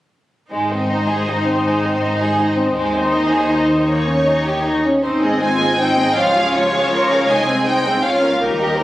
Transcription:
0.51 double bass section G#1, cello section G#2, violin section G#3 C5, viola section D#4
0.73 violin section C4
0.91 violin section D#4
1.10 violin section G#4
1.29 violin section D#4
1.47 violin section C4
1.66 violin section G#3
1.84 violin section C4
2.03 violin section D#4
2.21 violin section G#4
2.40 violin section D#4
2.57 violin section C4
2.76 cello section D#2, double bass section D#2, violin section G#3 C5, viola section D#4
2.95 violin section C4
3.14 violin section D#4
3.32 violin section G#4
3.51 violin section D#4
3.69 violin section C4
3.88 violin section A#3 C#5
4.08 violin section C#4
4.27 violin section D#4
4.45 violin section G4
4.65 violin section D#4
4.84 violin section C#4
5.03 double bass section G#1, viola section C4 D#4, cello section D#4, violin section C5
5.22 viola section G#3 C4, violin section G#4 D#5
5.41 viola section C4 D#4, cello section F4, violin section C5 G#5
5.60 viola section G#3 C4, violin section G#4 D#5
5.78 viola section C4 D#4, cello section D#4, violin section C5 G5
5.97 viola section G#3 C4, violin section G#4 D#5
6.16 double bass section C#2, viola section F3 F4, cello section F4, violin section F4 C#5 F5
6.34 viola section G#3 C#4, violin section G#4 F5
6.54 viola section F3 F4, violin section F4 C#5
6.72 viola section G#3 C#4, violin section G#4 F5
6.91 viola section F3 F4, violin section F4 C#5, cello section A#4
7.09 viola section G#3 C#4, violin section G#4 F5
7.28 double bass section C2, viola section G#3 D#4, cello section G#4, violin section C5 D#5 G#5
7.46 viola section C4, violin section G#4 C5
7.65 viola section G#3 D#4, cello section D#4, violin section C5 D#5 G5
7.84 viola section C4, violin section G#4 C5
8.02 double bass section C#2, viola section C#4 F4, cello section F4, violin section C#5 F5
8.22 viola section A#3 C#4, violin section A#4 F5
8.40 double bass section D#2, viola section G3 D#4, cello section G4, violin section A#4
8.61 viola section A#3 G4, violin section G4 D#5
8.80 viola section G3 D#4, violin section A#4

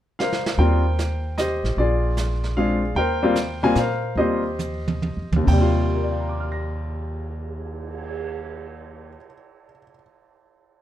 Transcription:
0.19 grand piano A#4 C5 F5, snare
0.33 snare
0.46 snare
0.58 upright bass D#2, grand piano G3 A#3 C4 F4 A#4 C5 G5, brush sweep
0.99 snare, hi-hat pedal
1.38 grand piano G4 C5 D#5, snare, hi-hat pedal
1.64 upright bass A1, snare
1.77 upright bass A#1, grand piano F4 G#4 D5, brush sweep
2.17 snare, hi-hat pedal
2.44 snare
2.57 grand piano G#3 C4 D4 F4 G#4 D5 F5
2.95 upright bass D#2, grand piano A#4 C5 G5, brush sweep
3.22 grand piano G3 A#3 C4 F4
3.36 snare, hi-hat pedal
3.63 grand piano G3 A#3 C4 F4 G#5
3.75 upright bass A#2, grand piano A#4 C5 F5, snare, hi-hat pedal
4.15 upright bass D#2, grand piano G3 A#3 C4 F4 G4 C5 D#5, brush sweep
4.59 hi-hat pedal, high tom
4.88 high tom
5.02 high tom
5.17 upright bass F2
5.32 upright bass D2, high tom
5.36 grand piano D#2
5.44 upright bass D#2, grand piano C3, kick, crash
5.48 grand piano G5
5.53 grand piano G3
5.61 grand piano F4
5.78 cymbal swell
5.95 grand piano A#4
6.02 grand piano D5
6.10 grand piano F5
6.20 grand piano A#5
6.29 grand piano D6
6.40 grand piano F6
6.52 grand piano A#6

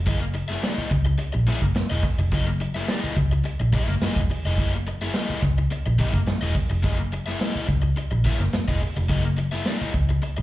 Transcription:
0.06 fingered electric bass F#1, overdriven electric guitar A#3 E4 G#4 D#5, kick, closed hi-hat
0.21 muted overdriven electric guitar stroke
0.34 muted overdriven electric guitar stroke, closed hi-hat
0.48 overdriven electric guitar A#3 E4 G#4 E5, snare
0.62 overdriven electric guitar A3 D#4 G4 D5, snare, closed hi-hat, tambourine
0.73 overdriven electric guitar A#3 E4 G#4 D#5
0.78 muted fingered electric bass stroke
0.91 fingered electric bass C#2, muted overdriven electric guitar stroke, kick, closed hi-hat
1.05 muted overdriven electric guitar stroke
1.18 muted overdriven electric guitar stroke, closed hi-hat
1.33 fingered electric bass A#1, muted overdriven electric guitar stroke
1.47 overdriven electric guitar A#3 E4 G#4 E5, snare, closed hi-hat
1.62 fingered electric bass F#1, muted overdriven electric guitar stroke, kick
1.75 muted overdriven electric guitar stroke, muted fingered electric bass stroke, snare, closed hi-hat, tambourine
1.90 fingered electric bass E1, overdriven electric guitar A#3 E4 G#4 D#5
2.03 muted overdriven electric guitar stroke, kick, snare, open hi-hat
2.19 fingered electric bass F1, muted overdriven electric guitar stroke
2.32 fingered electric bass F#1, overdriven electric guitar A#3 E4 G#4 D#5, kick, closed hi-hat
2.47 muted overdriven electric guitar stroke
2.60 muted overdriven electric guitar stroke, closed hi-hat
2.74 overdriven electric guitar A#3 E4 G#4 E5, snare
2.88 overdriven electric guitar A3 D#4 G4 D5, snare, closed hi-hat, tambourine
2.99 overdriven electric guitar A#3 E4 G#4 D#5
3.04 muted fingered electric bass stroke
3.17 fingered electric bass C#2, muted overdriven electric guitar stroke, kick, closed hi-hat
3.31 muted overdriven electric guitar stroke
3.44 muted overdriven electric guitar stroke, closed hi-hat
3.60 fingered electric bass A#1, muted overdriven electric guitar stroke
3.73 overdriven electric guitar A#3 E4 G#4 E5, kick, snare, closed hi-hat
3.88 fingered electric bass F#1, muted overdriven electric guitar stroke, snare
4.01 overdriven electric guitar A#3 E4 G#4 D#5, muted fingered electric bass stroke, snare, closed hi-hat, tambourine
4.16 fingered electric bass E1, kick
4.30 muted overdriven electric guitar stroke, open hi-hat
4.45 fingered electric bass F1, overdriven electric guitar A#3 E4 G#4 D#5
4.58 fingered electric bass F#1, overdriven electric guitar A#3 E4 G#4 D#5, kick, closed hi-hat
4.75 muted overdriven electric guitar stroke
4.86 muted overdriven electric guitar stroke, closed hi-hat
5.01 overdriven electric guitar A#3 E4 G#4 E5, snare
5.14 overdriven electric guitar A#3 E4 G#4 D#5, snare, closed hi-hat, tambourine
5.30 muted fingered electric bass stroke
5.43 fingered electric bass C#2, muted overdriven electric guitar stroke, kick, snare, closed hi-hat
5.58 muted overdriven electric guitar stroke
5.71 muted overdriven electric guitar stroke, closed hi-hat
5.86 fingered electric bass A#1, muted overdriven electric guitar stroke
5.99 overdriven electric guitar A#3 E4 G#4 E5, kick, snare, closed hi-hat
6.13 fingered electric bass F#1, muted overdriven electric guitar stroke, kick
6.27 muted overdriven electric guitar stroke, muted fingered electric bass stroke, snare, closed hi-hat, tambourine
6.41 fingered electric bass E1, overdriven electric guitar A#3 E4 G#4 D#5
6.55 muted overdriven electric guitar stroke, kick, snare, open hi-hat
6.70 fingered electric bass F1, muted overdriven electric guitar stroke
6.83 fingered electric bass F#1, overdriven electric guitar A#3 E4 G#4 D#5, kick, closed hi-hat
6.99 muted overdriven electric guitar stroke
7.12 muted overdriven electric guitar stroke, closed hi-hat
7.26 overdriven electric guitar A#3 E4 G#4 E5, snare
7.39 overdriven electric guitar A#3 E4 G#4 D#5, snare, closed hi-hat, tambourine
7.55 muted fingered electric bass stroke
7.67 fingered electric bass C#2, muted overdriven electric guitar stroke, kick, snare, closed hi-hat
7.82 muted overdriven electric guitar stroke
7.96 muted overdriven electric guitar stroke, closed hi-hat
8.11 fingered electric bass A#1, muted overdriven electric guitar stroke
8.25 overdriven electric guitar A#3 E4 G#4 E5, kick, snare, closed hi-hat
8.40 fingered electric bass F#1, muted overdriven electric guitar stroke, snare
8.53 muted fingered electric bass stroke, muted overdriven electric guitar stroke, snare, closed hi-hat, tambourine
8.68 fingered electric bass E1, overdriven electric guitar A#3 E4 G#4 D#5, kick
8.82 muted overdriven electric guitar stroke, open hi-hat
8.96 fingered electric bass F1, muted overdriven electric guitar stroke
9.09 fingered electric bass F#1, overdriven electric guitar A#3 E4 G#4 D#5, kick, closed hi-hat
9.25 muted overdriven electric guitar stroke
9.37 muted overdriven electric guitar stroke, closed hi-hat
9.52 overdriven electric guitar A#3 E4 G#4 E5, snare
9.65 overdriven electric guitar A3 D#4 G4 D5, snare, closed hi-hat, tambourine
9.76 overdriven electric guitar A#3 E4 G#4 D#5
9.81 muted fingered electric bass stroke
9.94 fingered electric bass C#2, muted overdriven electric guitar stroke, kick, closed hi-hat
10.09 muted overdriven electric guitar stroke
10.22 muted overdriven electric guitar stroke, closed hi-hat
10.37 fingered electric bass A#1, muted overdriven electric guitar stroke

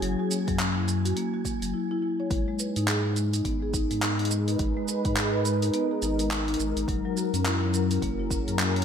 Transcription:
Already playing: analog synth pad F#3 C#4 G#4 A#5, synth texture G#5
0.02 sub bass F#1, marimba F#3, open hi-hat, shaker
0.19 marimba F#4
0.31 marimba A#3, open hi-hat, shaker
0.47 sub bass F#2, marimba F#3, kick, open hi-hat, shaker
0.59 marimba C#4, clap, open hi-hat, shaker
0.76 marimba E4
0.88 marimba F#3, open hi-hat, shaker
1.05 marimba F#4, open hi-hat, shaker
1.17 marimba A#3, open hi-hat, shaker
1.34 marimba F#4
1.45 marimba A#3, kick, open hi-hat, shaker
1.62 sub bass F#1, marimba F#3, open hi-hat, shaker
1.74 marimba E4
1.91 marimba E4
2.02 marimba E4
2.20 marimba C#5
2.31 sub bass G#1, analog synth pad G#3, marimba G#3, kick, open hi-hat, shaker
2.48 marimba G#3
2.55 analog synth pad D#4
2.59 marimba B4, shaker
2.76 sub bass G#2, marimba D#4, open hi-hat, shaker
2.88 marimba G#4, clap, open hi-hat, shaker
3.05 marimba D#4
3.16 marimba G#3, open hi-hat, shaker
3.33 marimba D#4, open hi-hat, shaker
3.45 sub bass G#1, marimba B3, kick, open hi-hat, shaker
3.62 marimba G#4
3.71 marimba D#4, analog synth pad A#4, kick, open hi-hat, shaker
3.91 sub bass G#2, marimba G#3, open hi-hat, shaker
4.02 marimba D#4, clap, open hi-hat, shaker
4.19 marimba D#4, open hi-hat
4.24 analog synth pad B4, open hi-hat
4.31 marimba G#3, shaker
4.48 marimba D#4, open hi-hat, shaker
4.59 sub bass G#1, marimba G#3, kick, open hi-hat, shaker
4.77 marimba G#3
4.88 marimba B4, shaker
5.05 sub bass G#2, marimba D#4, kick, open hi-hat, shaker
5.17 marimba G#4, clap, open hi-hat, shaker
5.34 marimba D#4
5.45 marimba G#3, open hi-hat, shaker
5.62 marimba D#4, open hi-hat, shaker
5.74 marimba B3, open hi-hat, shaker
5.91 marimba G#4
6.02 sub bass G#1, marimba D#4, open hi-hat, shaker
6.19 marimba G#3, open hi-hat, shaker
6.31 clap, open hi-hat, shaker
6.48 marimba D#4, open hi-hat
6.54 open hi-hat
6.59 sub bass G#1, marimba G#3, shaker
6.76 sub bass G#1, marimba D#4, open hi-hat, shaker
6.88 sub bass F#1, marimba F#3, analog synth pad F#3, kick, open hi-hat, shaker
7.05 marimba F#3
7.17 marimba F#4, shaker
7.34 sub bass F#2, marimba C#4, analog synth pad C#4, open hi-hat, shaker
7.45 marimba E4, clap, open hi-hat, shaker
7.63 marimba C#4
7.74 marimba F#3, open hi-hat, shaker
7.91 marimba C#4, open hi-hat, shaker
8.02 sub bass F#1, marimba A#3, kick, open hi-hat, shaker
8.08 analog synth pad G#4
8.19 marimba E4
8.31 marimba C#4, kick, open hi-hat, shaker
8.48 sub bass F#2, marimba F#3, open hi-hat, shaker
8.59 marimba C#4, clap, open hi-hat, shaker
8.76 marimba C#4, open hi-hat

